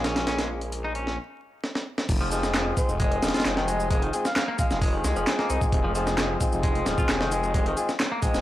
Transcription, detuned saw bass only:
0, 0, Header, 1, 2, 480
1, 0, Start_track
1, 0, Key_signature, -4, "minor"
1, 0, Tempo, 454545
1, 285, Time_signature, 4, 2, 24, 8
1, 8882, End_track
2, 0, Start_track
2, 0, Title_t, "Detuned saw bass"
2, 0, Program_c, 0, 39
2, 0, Note_on_c, 0, 34, 84
2, 1244, Note_off_c, 0, 34, 0
2, 2206, Note_on_c, 0, 29, 97
2, 2872, Note_off_c, 0, 29, 0
2, 3049, Note_on_c, 0, 29, 86
2, 3351, Note_off_c, 0, 29, 0
2, 3407, Note_on_c, 0, 27, 98
2, 3494, Note_off_c, 0, 27, 0
2, 3531, Note_on_c, 0, 29, 44
2, 3623, Note_off_c, 0, 29, 0
2, 3645, Note_on_c, 0, 29, 101
2, 4311, Note_off_c, 0, 29, 0
2, 4971, Note_on_c, 0, 29, 87
2, 5272, Note_off_c, 0, 29, 0
2, 5326, Note_on_c, 0, 36, 93
2, 5414, Note_off_c, 0, 36, 0
2, 5448, Note_on_c, 0, 29, 100
2, 5531, Note_off_c, 0, 29, 0
2, 5807, Note_on_c, 0, 36, 80
2, 5894, Note_off_c, 0, 36, 0
2, 6046, Note_on_c, 0, 29, 98
2, 6711, Note_off_c, 0, 29, 0
2, 6890, Note_on_c, 0, 29, 85
2, 7191, Note_off_c, 0, 29, 0
2, 7246, Note_on_c, 0, 27, 99
2, 7334, Note_off_c, 0, 27, 0
2, 7370, Note_on_c, 0, 29, 44
2, 7462, Note_off_c, 0, 29, 0
2, 7486, Note_on_c, 0, 29, 103
2, 8152, Note_off_c, 0, 29, 0
2, 8809, Note_on_c, 0, 29, 84
2, 8882, Note_off_c, 0, 29, 0
2, 8882, End_track
0, 0, End_of_file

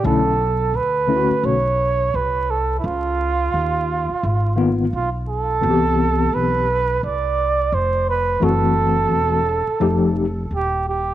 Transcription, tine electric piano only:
0, 0, Header, 1, 2, 480
1, 0, Start_track
1, 0, Tempo, 697674
1, 27, Time_signature, 4, 2, 24, 8
1, 7666, End_track
2, 0, Start_track
2, 0, Title_t, "Tine electric piano"
2, 0, Program_c, 0, 4
2, 19, Note_on_c, 0, 50, 71
2, 25, Note_on_c, 0, 57, 62
2, 30, Note_on_c, 0, 61, 66
2, 39, Note_on_c, 0, 64, 76
2, 206, Note_off_c, 0, 50, 0
2, 209, Note_off_c, 0, 57, 0
2, 212, Note_off_c, 0, 61, 0
2, 216, Note_off_c, 0, 64, 0
2, 740, Note_on_c, 0, 50, 62
2, 747, Note_on_c, 0, 57, 56
2, 749, Note_on_c, 0, 61, 56
2, 755, Note_on_c, 0, 64, 56
2, 803, Note_on_c, 0, 66, 68
2, 805, Note_off_c, 0, 64, 0
2, 1100, Note_off_c, 0, 50, 0
2, 1103, Note_off_c, 0, 57, 0
2, 1104, Note_off_c, 0, 61, 0
2, 1131, Note_off_c, 0, 66, 0
2, 3136, Note_on_c, 0, 51, 72
2, 3139, Note_on_c, 0, 58, 62
2, 3146, Note_on_c, 0, 59, 69
2, 3152, Note_on_c, 0, 65, 80
2, 3324, Note_off_c, 0, 51, 0
2, 3326, Note_off_c, 0, 58, 0
2, 3330, Note_off_c, 0, 59, 0
2, 3333, Note_off_c, 0, 65, 0
2, 3860, Note_on_c, 0, 52, 64
2, 3867, Note_on_c, 0, 59, 57
2, 3869, Note_on_c, 0, 60, 56
2, 3878, Note_on_c, 0, 66, 55
2, 3921, Note_on_c, 0, 67, 70
2, 3926, Note_off_c, 0, 66, 0
2, 4546, Note_off_c, 0, 52, 0
2, 4549, Note_off_c, 0, 59, 0
2, 4550, Note_off_c, 0, 60, 0
2, 4576, Note_off_c, 0, 67, 0
2, 5779, Note_on_c, 0, 52, 73
2, 5786, Note_on_c, 0, 57, 63
2, 5790, Note_on_c, 0, 60, 60
2, 5798, Note_on_c, 0, 66, 74
2, 6465, Note_off_c, 0, 52, 0
2, 6469, Note_off_c, 0, 57, 0
2, 6471, Note_off_c, 0, 60, 0
2, 6474, Note_off_c, 0, 66, 0
2, 6743, Note_on_c, 0, 53, 68
2, 6750, Note_on_c, 0, 57, 63
2, 6754, Note_on_c, 0, 63, 71
2, 6759, Note_on_c, 0, 67, 74
2, 7043, Note_off_c, 0, 53, 0
2, 7047, Note_off_c, 0, 57, 0
2, 7048, Note_off_c, 0, 63, 0
2, 7051, Note_off_c, 0, 67, 0
2, 7666, End_track
0, 0, End_of_file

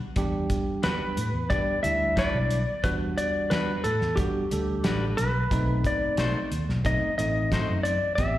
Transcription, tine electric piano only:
0, 0, Header, 1, 2, 480
1, 0, Start_track
1, 0, Tempo, 668151
1, 116, Time_signature, 4, 2, 24, 8
1, 6023, End_track
2, 0, Start_track
2, 0, Title_t, "Tine electric piano"
2, 0, Program_c, 0, 4
2, 118, Note_on_c, 0, 55, 81
2, 123, Note_on_c, 0, 62, 77
2, 127, Note_on_c, 0, 67, 95
2, 836, Note_off_c, 0, 55, 0
2, 838, Note_off_c, 0, 62, 0
2, 840, Note_off_c, 0, 67, 0
2, 1075, Note_on_c, 0, 55, 72
2, 1081, Note_on_c, 0, 62, 67
2, 1083, Note_on_c, 0, 67, 82
2, 1257, Note_off_c, 0, 55, 0
2, 1260, Note_off_c, 0, 62, 0
2, 1261, Note_off_c, 0, 67, 0
2, 1311, Note_on_c, 0, 55, 63
2, 1315, Note_on_c, 0, 62, 62
2, 1322, Note_on_c, 0, 64, 72
2, 1854, Note_off_c, 0, 55, 0
2, 1856, Note_off_c, 0, 62, 0
2, 1859, Note_off_c, 0, 64, 0
2, 2035, Note_on_c, 0, 55, 70
2, 2038, Note_on_c, 0, 62, 65
2, 2046, Note_on_c, 0, 66, 83
2, 2755, Note_off_c, 0, 55, 0
2, 2756, Note_off_c, 0, 62, 0
2, 2760, Note_off_c, 0, 66, 0
2, 3000, Note_on_c, 0, 55, 72
2, 3006, Note_on_c, 0, 62, 65
2, 3013, Note_on_c, 0, 66, 80
2, 3180, Note_off_c, 0, 55, 0
2, 3183, Note_off_c, 0, 62, 0
2, 3186, Note_off_c, 0, 66, 0
2, 3238, Note_on_c, 0, 55, 60
2, 3244, Note_on_c, 0, 62, 56
2, 3252, Note_on_c, 0, 69, 72
2, 3778, Note_off_c, 0, 55, 0
2, 3781, Note_off_c, 0, 62, 0
2, 3784, Note_off_c, 0, 69, 0
2, 3959, Note_on_c, 0, 57, 74
2, 3964, Note_on_c, 0, 60, 66
2, 3970, Note_on_c, 0, 63, 80
2, 4676, Note_off_c, 0, 57, 0
2, 4679, Note_off_c, 0, 60, 0
2, 4682, Note_off_c, 0, 63, 0
2, 4916, Note_on_c, 0, 57, 73
2, 4920, Note_on_c, 0, 60, 64
2, 4925, Note_on_c, 0, 63, 77
2, 5098, Note_off_c, 0, 57, 0
2, 5100, Note_off_c, 0, 60, 0
2, 5102, Note_off_c, 0, 63, 0
2, 5156, Note_on_c, 0, 57, 64
2, 5162, Note_on_c, 0, 60, 60
2, 5168, Note_on_c, 0, 63, 71
2, 5697, Note_off_c, 0, 57, 0
2, 5699, Note_off_c, 0, 60, 0
2, 5702, Note_off_c, 0, 63, 0
2, 5880, Note_on_c, 0, 59, 70
2, 5885, Note_on_c, 0, 60, 66
2, 5891, Note_on_c, 0, 67, 81
2, 6023, Note_off_c, 0, 59, 0
2, 6023, Note_off_c, 0, 60, 0
2, 6023, Note_off_c, 0, 67, 0
2, 6023, End_track
0, 0, End_of_file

